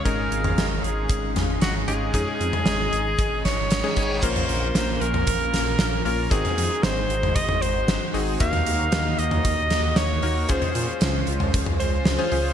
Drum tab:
CC |----------------|----------------|x---------------|----------------|
HH |x-x-x-x-x-x-x-x-|x-x-x-x-x-x-x-x-|x-x-x-x-x-x-x-o-|x-x-x-x-x-x-x-o-|
SD |----o-----o-o---|----o-----o-o---|----o-----o-o---|----o-------o---|
T2 |---o------o-----|---o------------|-o-----o--------|-o-----o-o------|
BD |o-------o-------|o-------o-o---o-|o-------o-------|o-------o-------|

CC |----------------|----------------|
HH |x-x-x-x-x-x-x-o-|x-x-x-x-x-x-x-o-|
SD |----o-----o-o---|----o-------o---|
T2 |-o-----o--------|-o-----o-o------|
BD |o-------o-------|o-------o-------|